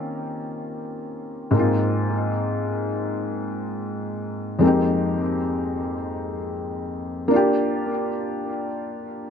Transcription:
felt piano
Already playing: D#3 A#3 C4 C#4 F4 G4
1.51 G#2 A#3
1.55 C4 D#4
1.59 F4
4.59 F2 G#3 A#3
4.64 C4 D#4 G4
7.28 A#3 D4
7.33 F4 G4

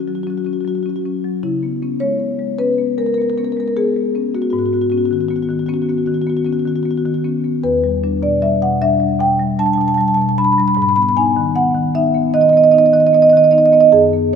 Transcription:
marimba
Already playing: C#4
0.00 F#4
0.07 F#3 F#4
0.15 F#4
0.23 F#3 C#4 F#4
0.30 F#4
0.38 F#4
0.45 C#4 F#4
0.53 F#4
0.61 F#4
0.65 F#3 F#4
0.75 F#4
0.83 C#4 F#4
0.89 F#4
0.96 F#4
1.05 F#3 C#4
1.24 F#3
1.43 C#3 E4
1.63 B3
1.82 B3 C#4
2.00 G#3 C#5
2.19 B3
2.39 G#3
2.59 B3 C#4 B4
2.78 B3
2.98 G#3 A#4
3.06 A#4
3.14 B3 A#4
3.22 A#4
3.30 A#4
3.38 B3 C#4 A#4
3.44 A#4
3.52 A#4
3.57 G#3 A#4
3.68 A#4
3.77 B3 G#4
3.96 G#3
4.15 B3 C#4
4.35 B3 F#4
4.42 F#4
4.50 G#2 F#4
4.59 F#4
4.66 F#4
4.73 B3 F#4
4.82 F#4
4.90 B3 C#4 F#4
4.98 F#4
5.06 F#4
5.11 D#3 F#4
5.21 F#4
5.29 B3 F#4
5.36 F#4
5.42 F#4
5.49 D#3 F#4
5.59 F#4
5.66 B3 C#4 F#4
5.74 F#4
5.82 F#4
5.89 B3 F#4
5.98 F#4
6.06 D#3 F#4
6.14 F#4
6.21 F#4
6.27 B3 F#4
6.37 F#4
6.44 B3 C#4 F#4
6.53 F#4
6.59 F#4
6.65 D#3 F#4
6.76 F#4
6.83 B3 F#4
6.91 F#4
6.97 F#4
7.05 D#3 F#4
7.14 F#4
7.24 B3 C#4
7.44 B3
7.63 E2 B4
7.84 G3
8.04 G3 D4
8.22 B2 D5
8.42 G3 E5
8.62 B2 F#5
8.82 G3 D4 E5
9.00 G3
9.20 B2 G5
9.39 G3
9.59 G3 D4 A5
9.66 A5
9.73 A5
9.78 B2 A5
9.88 A5
9.94 G3 A5
10.01 A5
10.08 A5
10.14 B2 A5
10.22 A5
10.29 A5
10.38 G3 D4 B5
10.44 B5
10.52 B5
10.58 G3 B5
10.68 B5
10.75 G#2 B5
10.82 B5
10.89 B5
10.96 B3 B5
11.02 B5
11.09 B5
11.16 B3 D#4 G#5
11.37 D#3
11.55 B3 F#5
11.75 D#3
11.95 B3 D#4 E5
12.14 B3
12.34 D#3 D#5
12.41 D#5
12.49 B3 D#5
12.57 D#5
12.64 D#5
12.71 B3 D#4 D#5
12.78 D#5
12.86 D#5
12.93 D#3 D#5
13.00 D#5
13.07 D#5
13.13 B3 D#5
13.22 D#5
13.30 D#3 D#5
13.37 D#5
13.44 D#5
13.51 B3 D#4 D#5
13.58 D#5
13.66 D#5
13.73 B3 D#5
13.81 D#5
13.92 F#2 G#4
14.13 B3

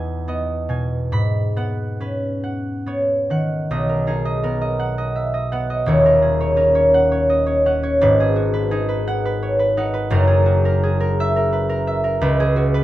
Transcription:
harp
Already playing: E2 B3 D#4 B4 D#5 G#5 B5
0.28 B3 D#5
0.69 B2 G#5
1.12 G#2 B5
1.56 B3 F#5
2.00 C#4 B4
2.44 F#5
2.86 B3 C#5
3.30 D#3 F#5
3.71 B1 D#5
3.89 A#4
4.07 D#4 G#4
4.25 D#5
4.43 B3 A#4
4.61 D#5
4.79 F#5
4.98 D#5
5.16 E5
5.34 D#5
5.52 B3 F#5
5.70 D#5
5.86 D#1 D#2 C#5
6.06 A#4
6.22 G#4
6.40 C#5
6.56 C#4 A#4
6.75 C#5
6.94 F#5
7.12 C#5
7.30 D#5
7.46 C#5
7.66 C#4 F#5
7.83 C#5
8.01 G#1 G#2 B4
8.20 G#4
8.36 F#4
8.54 B4
8.71 D#4 G#4
8.89 B4
9.07 F#5
9.25 B4
9.43 C#5
9.59 B4
9.77 D#4 F#5
9.94 B4
10.10 F#1 F#2 A#4
10.27 G#4
10.46 F#4
10.65 A#4
10.83 G#4
11.00 A#4
11.20 E5
11.36 A#4
11.53 B4
11.69 A#4
11.87 E5
12.04 A#4
12.21 C#2 B4
12.40 G#4
12.56 F#4
12.74 B4

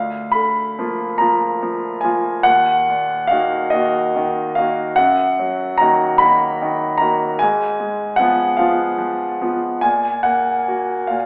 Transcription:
grand piano
Already playing: D2 F5
0.32 D3 B5
0.79 F3 A#3 F4
1.18 F3 A#3 F4 A#5
1.63 F3
2.01 F3 G#5
2.05 A#3 F4
2.43 D#2 F#5
2.89 A#2
3.27 D#3 A#3 F5
3.32 F#4
3.70 D#3 A#3 F#4 D#5
4.16 D#3
4.55 D#3 A#3 F#4 F5
4.96 F#2 F#5
5.39 F#3
5.78 D#3 A#3 F#4 A#5
6.18 D#3 A#3 B5
6.22 F#4
6.62 D#3
6.98 D#3 A#3 A#5
7.02 F#4
7.39 G#2 G#5
7.80 G#3
8.16 F3 B3 F#5
8.21 F4
8.57 F3 B3 F4 F5
8.98 F3
9.42 F3 B3 F4
9.81 A#2 G#5
10.23 A#3 F#5
10.68 A#3 F#4
11.07 A#2 F5

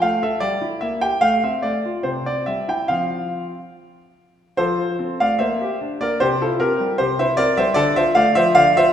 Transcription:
grand piano
0.02 A3 F5
0.23 A4 E5
0.40 G3 D5
0.62 E4
0.81 A#3 E5
1.01 G4 G5
1.21 A3 F5
1.44 C4 E5
1.62 A3 D5
1.86 F4
2.03 C3 C5
2.26 C4 D5
2.46 G3 E5
2.68 E4 G5
2.88 F3 C4 F4 F5
4.57 F3 A4 C5
4.79 F4
4.99 C4
5.20 A3 D5 F5
5.39 A#3 C5 E5
5.61 G4
5.81 D4
6.01 A#3 A#4 D5
6.20 C3 G4 C5
6.42 E4 F4 A4
6.60 C4 G4 A#4
6.80 G3
6.98 C3 G4 C5
7.19 E4 C5 E5
7.37 C4 A#4 D5
7.57 G3 C5 E5
7.74 D3 A4 D5
7.96 F4 C5 E5
8.15 A3 D5 F5
8.35 F3 C5 E5
8.55 D3 D5 F5
8.77 F4 C5 E5

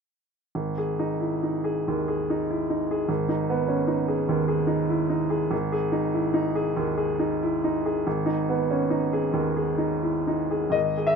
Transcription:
upright piano
0.55 G#1
0.78 G#4
0.99 D#4
1.20 E4
1.43 D#4
1.64 G#4
1.88 D#2
2.08 G#4
2.30 D#4
2.50 E4
2.70 D#4
2.91 G#4
3.09 G#1
3.29 D#4
3.50 B3
3.68 C#4
3.87 D#4
4.08 G#4
4.29 D#2
4.48 G#4
4.67 D#4
4.89 E4
5.09 D#4
5.30 G#4
5.51 G#1
5.72 G#4
5.92 D#4
6.14 E4
6.34 D#4
6.55 G#4
6.77 D#2
6.97 G#4
7.19 D#4
7.43 E4
7.64 D#4
7.86 G#4
8.07 G#1
8.26 D#4
8.49 B3
8.71 C#4
8.90 D#4
9.13 G#4
9.33 D#2
9.56 G#4
9.78 D#4
10.03 E4
10.27 D#4
10.51 G#4
10.70 G#1 D#5
10.97 G#4
11.07 E5

